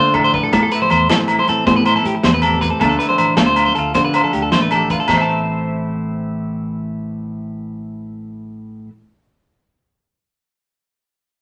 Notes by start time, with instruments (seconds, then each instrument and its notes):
Already playing: fingered electric bass D3, clean electric guitar D3 A3 F4 C5
0.00 clean electric guitar D4
0.14 clean electric guitar A2 A4, kick, low conga, low agogo
0.24 clean electric guitar C5
0.34 clean electric guitar B4, kick, low conga
0.43 clean electric guitar A4
0.53 fingered electric bass A2, clean electric guitar A2 A4, kick, closed hi-hat, high conga, low conga, low agogo
0.63 clean electric guitar A4
0.71 clean electric guitar E4 B4, closed hi-hat
0.82 clean electric guitar C5, low conga
0.90 fingered electric bass E2, clean electric guitar C5, closed hi-hat, low agogo
1.10 fingered electric bass A2, clean electric guitar E3 C4 A4, snare, closed hi-hat, high conga, low conga
1.21 muted clean electric guitar stroke
1.28 clean electric guitar E4, closed hi-hat, low agogo
1.39 clean electric guitar C5, low conga
1.48 fingered electric bass A2, clean electric guitar C4 A4, closed hi-hat
1.67 fingered electric bass A2, clean electric guitar A2 C5, kick, closed hi-hat, high conga, low conga
1.76 clean electric guitar B4
1.85 clean electric guitar E4 C5, closed hi-hat, low agogo
1.96 clean electric guitar A4, low conga
2.05 fingered electric bass A2, clean electric guitar G4, closed hi-hat
2.15 muted clean electric guitar stroke
2.23 fingered electric bass E2, clean electric guitar E3 C4 C5, snare, closed hi-hat, high conga, low conga
2.34 clean electric guitar B4
2.42 clean electric guitar G4 A4, closed hi-hat, low conga, low agogo
2.54 low conga
2.61 clean electric guitar C4 B4, kick, closed hi-hat
2.70 clean electric guitar A4
2.80 fingered electric bass D2, clean electric guitar D3 A3 D4 F4 A4, kick, closed hi-hat, high conga, low conga, low agogo
2.89 clean electric guitar A4
2.99 clean electric guitar E4 B4, closed hi-hat
3.09 clean electric guitar C5, low conga
3.18 fingered electric bass A1, clean electric guitar C5, closed hi-hat, low agogo
3.37 fingered electric bass D2, clean electric guitar A3 F4 A4, snare, closed hi-hat, high conga, low conga
3.46 clean electric guitar C5
3.56 clean electric guitar F4, closed hi-hat, low agogo
3.65 clean electric guitar C5, low conga
3.75 fingered electric bass D2, clean electric guitar F4 A4, closed hi-hat
3.94 fingered electric bass D3, clean electric guitar D3 C5, kick, closed hi-hat, high conga, low conga
4.05 clean electric guitar B4
4.13 clean electric guitar F4 C5, closed hi-hat, low agogo
4.23 clean electric guitar A4, low conga
4.33 fingered electric bass D2, clean electric guitar G4, closed hi-hat
4.42 clean electric guitar A4
4.52 fingered electric bass A1, clean electric guitar A3 C5, muted clean electric guitar stroke, snare, closed hi-hat, high conga, low conga
4.62 clean electric guitar B4
4.71 clean electric guitar A4, closed hi-hat, low conga, low agogo
4.75 clean electric guitar G4
4.80 low conga
4.90 clean electric guitar F4 B4, kick, closed hi-hat
5.00 clean electric guitar A4
5.08 fingered electric bass A1, clean electric guitar A2 A4, kick, snare, high conga, low agogo
5.13 clean electric guitar E3 A3 C4 C5
5.18 clean electric guitar E4 E5 A5